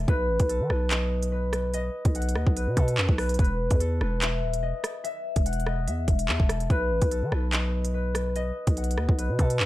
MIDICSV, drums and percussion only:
0, 0, Header, 1, 2, 480
1, 0, Start_track
1, 0, Tempo, 413793
1, 93, Time_signature, 4, 2, 24, 8
1, 11203, End_track
2, 0, Start_track
2, 0, Title_t, "Drums"
2, 93, Note_on_c, 9, 36, 114
2, 93, Note_on_c, 9, 42, 40
2, 209, Note_off_c, 9, 36, 0
2, 209, Note_off_c, 9, 42, 0
2, 458, Note_on_c, 9, 42, 84
2, 461, Note_on_c, 9, 36, 102
2, 573, Note_off_c, 9, 42, 0
2, 573, Note_on_c, 9, 42, 87
2, 577, Note_off_c, 9, 36, 0
2, 689, Note_off_c, 9, 42, 0
2, 812, Note_on_c, 9, 37, 92
2, 928, Note_off_c, 9, 37, 0
2, 1052, Note_on_c, 9, 39, 126
2, 1056, Note_on_c, 9, 42, 87
2, 1168, Note_off_c, 9, 39, 0
2, 1172, Note_off_c, 9, 42, 0
2, 1421, Note_on_c, 9, 42, 81
2, 1537, Note_off_c, 9, 42, 0
2, 1772, Note_on_c, 9, 37, 100
2, 1776, Note_on_c, 9, 42, 84
2, 1888, Note_off_c, 9, 37, 0
2, 1892, Note_off_c, 9, 42, 0
2, 2013, Note_on_c, 9, 42, 70
2, 2129, Note_off_c, 9, 42, 0
2, 2378, Note_on_c, 9, 42, 84
2, 2380, Note_on_c, 9, 36, 100
2, 2493, Note_off_c, 9, 42, 0
2, 2493, Note_on_c, 9, 42, 74
2, 2496, Note_off_c, 9, 36, 0
2, 2573, Note_off_c, 9, 42, 0
2, 2573, Note_on_c, 9, 42, 73
2, 2652, Note_off_c, 9, 42, 0
2, 2652, Note_on_c, 9, 42, 77
2, 2731, Note_on_c, 9, 37, 89
2, 2768, Note_off_c, 9, 42, 0
2, 2847, Note_off_c, 9, 37, 0
2, 2860, Note_on_c, 9, 36, 96
2, 2976, Note_off_c, 9, 36, 0
2, 2976, Note_on_c, 9, 42, 86
2, 3092, Note_off_c, 9, 42, 0
2, 3211, Note_on_c, 9, 42, 91
2, 3212, Note_on_c, 9, 36, 95
2, 3327, Note_off_c, 9, 42, 0
2, 3328, Note_off_c, 9, 36, 0
2, 3340, Note_on_c, 9, 42, 82
2, 3452, Note_on_c, 9, 39, 115
2, 3456, Note_off_c, 9, 42, 0
2, 3568, Note_off_c, 9, 39, 0
2, 3580, Note_on_c, 9, 36, 95
2, 3692, Note_on_c, 9, 37, 102
2, 3696, Note_off_c, 9, 36, 0
2, 3696, Note_on_c, 9, 46, 60
2, 3808, Note_off_c, 9, 37, 0
2, 3812, Note_off_c, 9, 46, 0
2, 3820, Note_on_c, 9, 42, 68
2, 3876, Note_off_c, 9, 42, 0
2, 3876, Note_on_c, 9, 42, 62
2, 3932, Note_off_c, 9, 42, 0
2, 3932, Note_on_c, 9, 42, 50
2, 3933, Note_on_c, 9, 36, 115
2, 3996, Note_off_c, 9, 42, 0
2, 3996, Note_on_c, 9, 42, 41
2, 4049, Note_off_c, 9, 36, 0
2, 4112, Note_off_c, 9, 42, 0
2, 4298, Note_on_c, 9, 42, 90
2, 4300, Note_on_c, 9, 36, 98
2, 4413, Note_off_c, 9, 42, 0
2, 4413, Note_on_c, 9, 42, 85
2, 4416, Note_off_c, 9, 36, 0
2, 4529, Note_off_c, 9, 42, 0
2, 4652, Note_on_c, 9, 37, 88
2, 4768, Note_off_c, 9, 37, 0
2, 4892, Note_on_c, 9, 39, 127
2, 4896, Note_on_c, 9, 42, 88
2, 5008, Note_off_c, 9, 39, 0
2, 5012, Note_off_c, 9, 42, 0
2, 5261, Note_on_c, 9, 42, 83
2, 5377, Note_off_c, 9, 42, 0
2, 5612, Note_on_c, 9, 37, 103
2, 5616, Note_on_c, 9, 42, 85
2, 5728, Note_off_c, 9, 37, 0
2, 5732, Note_off_c, 9, 42, 0
2, 5853, Note_on_c, 9, 42, 72
2, 5969, Note_off_c, 9, 42, 0
2, 6218, Note_on_c, 9, 42, 88
2, 6220, Note_on_c, 9, 36, 101
2, 6332, Note_off_c, 9, 42, 0
2, 6332, Note_on_c, 9, 42, 87
2, 6336, Note_off_c, 9, 36, 0
2, 6412, Note_off_c, 9, 42, 0
2, 6412, Note_on_c, 9, 42, 72
2, 6492, Note_off_c, 9, 42, 0
2, 6492, Note_on_c, 9, 42, 51
2, 6572, Note_on_c, 9, 37, 93
2, 6608, Note_off_c, 9, 42, 0
2, 6688, Note_off_c, 9, 37, 0
2, 6816, Note_on_c, 9, 42, 89
2, 6932, Note_off_c, 9, 42, 0
2, 7051, Note_on_c, 9, 36, 94
2, 7051, Note_on_c, 9, 42, 91
2, 7167, Note_off_c, 9, 36, 0
2, 7167, Note_off_c, 9, 42, 0
2, 7180, Note_on_c, 9, 42, 85
2, 7292, Note_on_c, 9, 39, 117
2, 7296, Note_off_c, 9, 42, 0
2, 7408, Note_off_c, 9, 39, 0
2, 7420, Note_on_c, 9, 36, 96
2, 7532, Note_on_c, 9, 37, 103
2, 7535, Note_on_c, 9, 42, 84
2, 7536, Note_off_c, 9, 36, 0
2, 7648, Note_off_c, 9, 37, 0
2, 7651, Note_off_c, 9, 42, 0
2, 7660, Note_on_c, 9, 42, 70
2, 7772, Note_off_c, 9, 42, 0
2, 7772, Note_on_c, 9, 36, 115
2, 7772, Note_on_c, 9, 42, 40
2, 7888, Note_off_c, 9, 36, 0
2, 7888, Note_off_c, 9, 42, 0
2, 8138, Note_on_c, 9, 42, 88
2, 8140, Note_on_c, 9, 36, 99
2, 8253, Note_off_c, 9, 42, 0
2, 8253, Note_on_c, 9, 42, 90
2, 8256, Note_off_c, 9, 36, 0
2, 8369, Note_off_c, 9, 42, 0
2, 8492, Note_on_c, 9, 37, 91
2, 8608, Note_off_c, 9, 37, 0
2, 8732, Note_on_c, 9, 39, 121
2, 8736, Note_on_c, 9, 42, 86
2, 8848, Note_off_c, 9, 39, 0
2, 8852, Note_off_c, 9, 42, 0
2, 9101, Note_on_c, 9, 42, 84
2, 9217, Note_off_c, 9, 42, 0
2, 9452, Note_on_c, 9, 37, 100
2, 9456, Note_on_c, 9, 42, 82
2, 9568, Note_off_c, 9, 37, 0
2, 9572, Note_off_c, 9, 42, 0
2, 9693, Note_on_c, 9, 42, 69
2, 9809, Note_off_c, 9, 42, 0
2, 10058, Note_on_c, 9, 42, 86
2, 10060, Note_on_c, 9, 36, 100
2, 10173, Note_off_c, 9, 42, 0
2, 10173, Note_on_c, 9, 42, 78
2, 10176, Note_off_c, 9, 36, 0
2, 10253, Note_off_c, 9, 42, 0
2, 10253, Note_on_c, 9, 42, 73
2, 10333, Note_off_c, 9, 42, 0
2, 10333, Note_on_c, 9, 42, 72
2, 10412, Note_on_c, 9, 37, 93
2, 10449, Note_off_c, 9, 42, 0
2, 10528, Note_off_c, 9, 37, 0
2, 10540, Note_on_c, 9, 36, 97
2, 10656, Note_off_c, 9, 36, 0
2, 10656, Note_on_c, 9, 42, 86
2, 10772, Note_off_c, 9, 42, 0
2, 10892, Note_on_c, 9, 36, 92
2, 10892, Note_on_c, 9, 42, 87
2, 11008, Note_off_c, 9, 36, 0
2, 11008, Note_off_c, 9, 42, 0
2, 11021, Note_on_c, 9, 42, 85
2, 11133, Note_on_c, 9, 39, 111
2, 11137, Note_off_c, 9, 42, 0
2, 11203, Note_off_c, 9, 39, 0
2, 11203, End_track
0, 0, End_of_file